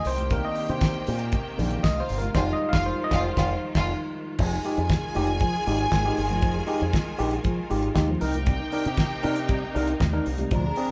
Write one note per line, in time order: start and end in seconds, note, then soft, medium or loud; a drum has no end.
0.04 0.40 C2 loud
0.04 2.33 C3 medium
0.04 2.33 D#3 medium
0.04 2.33 A#3 medium
0.04 1.81 G4 medium
0.04 0.32 C5 loud
0.04 1.81 G5 medium
0.04 open hi-hat medium
0.04 tambourine medium
0.18 closed hi-hat medium
0.18 high conga medium
0.30 1.03 D#3 medium
0.30 1.03 A#3 medium
0.30 1.04 D4 medium
0.30 0.44 A#4 medium
0.30 kick loud
0.30 closed hi-hat medium
0.30 tambourine medium
0.45 0.70 D#5 medium
0.55 open hi-hat soft
0.55 tambourine soft
0.69 0.87 C3 medium
0.69 1.17 C5 medium
0.69 closed hi-hat soft
0.81 kick loud
0.81 snare loud
0.81 closed hi-hat medium
0.81 tambourine loud
0.81 high conga medium
1.07 1.34 A#2 loud
1.07 open hi-hat medium
1.07 tambourine medium
1.07 muted conga soft
1.19 closed hi-hat medium
1.32 kick loud
1.32 closed hi-hat medium
1.32 tambourine soft
1.32 muted conga medium
1.58 1.76 A#1 loud
1.58 1.81 D#3 medium
1.58 1.81 A#3 medium
1.58 1.82 D4 medium
1.58 open hi-hat medium
1.58 tambourine medium
1.58 low conga medium
1.71 closed hi-hat soft
1.83 2.02 C2 medium
1.83 2.32 F4 medium
1.83 2.01 D#5 medium
1.83 2.32 F5 medium
1.83 kick loud
1.83 snare loud
1.83 closed hi-hat medium
1.83 tambourine loud
1.83 high conga medium
2.00 2.18 C5 medium
2.09 2.27 G1 medium
2.09 open hi-hat medium
2.09 tambourine medium
2.18 2.34 A#4 medium
2.18 closed hi-hat medium
2.22 high conga medium
2.33 2.52 F1 loud
2.33 4.37 D#3 medium
2.33 4.37 F3 medium
2.33 4.35 G3 medium
2.33 4.35 G#3 medium
2.33 4.36 D#4 medium
2.33 2.51 F4 loud
2.33 4.37 F4 loud
2.33 2.43 C5 loud
2.33 2.52 F5 loud
2.33 kick loud
2.33 snare loud
2.33 crash medium
2.53 2.70 D#5 loud
2.69 2.85 F5 loud
2.73 2.91 F1 loud
2.73 2.91 F4 loud
2.73 2.91 F5 loud
2.73 kick loud
2.73 snare loud
2.86 3.03 C5 loud
3.04 3.21 D#5 loud
3.11 3.29 F1 loud
3.11 3.29 F4 loud
3.11 3.29 F5 loud
3.11 kick loud
3.11 snare loud
3.21 3.68 C5 medium
3.36 3.54 F1 loud
3.36 3.54 F4 loud
3.36 3.54 F5 loud
3.36 kick loud
3.36 snare loud
3.75 3.93 F1 loud
3.75 3.93 F4 loud
3.75 3.93 F5 loud
3.75 kick loud
3.75 snare loud
3.75 crash medium
4.39 4.57 F1 loud
4.39 8.18 D#3 medium
4.39 4.52 F3 medium
4.39 8.18 G#3 medium
4.39 8.18 F4 medium
4.39 7.92 G#4 medium
4.39 7.92 G#5 loud
4.39 kick loud
4.39 crash loud
4.39 muted conga soft
4.52 4.57 D#4 soft
4.52 4.57 G4 soft
4.63 4.78 G#3 medium
4.63 4.78 D#4 medium
4.63 4.78 G4 medium
4.63 open hi-hat medium
4.77 4.95 F2 loud
4.77 closed hi-hat soft
4.89 kick loud
4.89 snare loud
4.89 closed hi-hat medium
4.89 high conga medium
5.14 5.42 F1 medium
5.14 5.28 G#3 medium
5.14 5.29 D#4 medium
5.14 5.29 G4 loud
5.14 open hi-hat medium
5.14 muted conga medium
5.27 closed hi-hat medium
5.40 5.54 F3 medium
5.40 kick loud
5.40 closed hi-hat medium
5.40 muted conga medium
5.67 5.84 G#1 loud
5.67 5.80 G#3 medium
5.67 5.79 D#4 medium
5.67 5.79 G4 medium
5.67 open hi-hat medium
5.78 5.85 D#4 soft
5.78 5.85 G4 soft
5.78 closed hi-hat soft
5.92 6.10 G#1 loud
5.92 kick loud
5.92 snare loud
5.92 closed hi-hat medium
5.92 high conga medium
6.05 6.18 G#3 medium
6.05 6.18 D#4 medium
6.05 6.18 G4 medium
6.16 6.43 G1 medium
6.16 open hi-hat medium
6.29 6.41 F3 medium
6.29 closed hi-hat medium
6.29 high conga medium
6.42 6.60 F1 loud
6.42 6.56 F3 medium
6.42 kick loud
6.42 closed hi-hat medium
6.55 6.61 D#4 soft
6.55 6.61 G4 soft
6.67 6.81 G#3 medium
6.67 6.81 D#4 medium
6.67 6.81 G4 medium
6.67 open hi-hat medium
6.81 6.90 F2 medium
6.81 closed hi-hat soft
6.93 kick loud
6.93 snare loud
6.93 closed hi-hat medium
6.93 high conga medium
7.18 7.37 A#1 medium
7.18 7.32 G#3 loud
7.18 7.32 D#4 medium
7.18 7.32 G4 loud
7.18 open hi-hat medium
7.18 muted conga soft
7.31 closed hi-hat medium
7.44 7.58 F3 medium
7.44 kick loud
7.44 closed hi-hat medium
7.44 muted conga medium
7.70 7.88 G#1 medium
7.70 7.83 G#3 medium
7.70 7.82 D#4 medium
7.70 7.82 G4 medium
7.70 open hi-hat medium
7.83 7.88 D#4 soft
7.83 7.88 G4 soft
7.83 closed hi-hat soft
7.95 8.13 D#2 medium
7.95 8.08 D#4 medium
7.95 8.09 G4 medium
7.95 kick medium
7.95 snare loud
7.95 closed hi-hat medium
7.95 high conga medium
8.08 8.22 F3 medium
8.21 8.57 C2 loud
8.21 10.48 C3 medium
8.21 10.49 A#3 medium
8.21 8.34 D#4 medium
8.21 10.49 D#4 loud
8.21 10.21 G4 medium
8.21 8.35 A#4 medium
8.21 10.21 G5 loud
8.21 open hi-hat medium
8.33 closed hi-hat soft
8.33 high conga medium
8.46 8.60 C3 medium
8.46 8.60 G3 medium
8.46 kick loud
8.46 closed hi-hat medium
8.46 muted conga soft
8.60 8.65 D#4 soft
8.60 8.65 A#4 medium
8.72 8.86 D4 medium
8.72 8.86 D#4 medium
8.72 8.86 A#4 medium
8.72 open hi-hat medium
8.86 9.03 C3 loud
8.86 closed hi-hat soft
8.97 kick loud
8.97 snare loud
8.97 closed hi-hat medium
8.97 high conga medium
9.23 9.50 C3 loud
9.23 9.37 D4 loud
9.23 9.37 D#4 medium
9.23 9.37 A#4 loud
9.23 open hi-hat medium
9.23 muted conga soft
9.36 closed hi-hat medium
9.49 9.62 C3 medium
9.49 9.62 G3 medium
9.49 kick loud
9.49 closed hi-hat medium
9.49 muted conga medium
9.75 9.93 C2 loud
9.75 9.88 D4 medium
9.75 9.87 D#4 medium
9.75 9.87 A#4 loud
9.75 open hi-hat medium
9.87 9.93 D#4 soft
9.87 9.93 A#4 soft
9.87 closed hi-hat soft
10.00 10.18 D#2 medium
10.00 kick medium
10.00 snare loud
10.00 closed hi-hat medium
10.00 high conga medium
10.13 10.26 D4 medium
10.13 10.26 D#4 medium
10.13 10.26 A#4 medium
10.26 10.44 C2 medium
10.26 open hi-hat medium
10.37 10.52 C3 medium
10.37 10.52 G3 medium
10.37 closed hi-hat medium
10.37 high conga medium
10.50 10.69 D2 loud
10.50 10.91 A#2 medium
10.50 10.64 A#2 medium
10.50 10.64 F3 medium
10.50 10.91 G#3 medium
10.50 10.91 D4 medium
10.50 10.91 A#4 loud
10.50 10.91 A#5 loud
10.50 kick loud
10.50 closed hi-hat medium
10.64 10.69 D4 soft
10.64 10.69 G#4 soft
10.76 10.90 C4 medium
10.76 10.90 D4 medium
10.76 10.90 G#4 medium
10.76 open hi-hat medium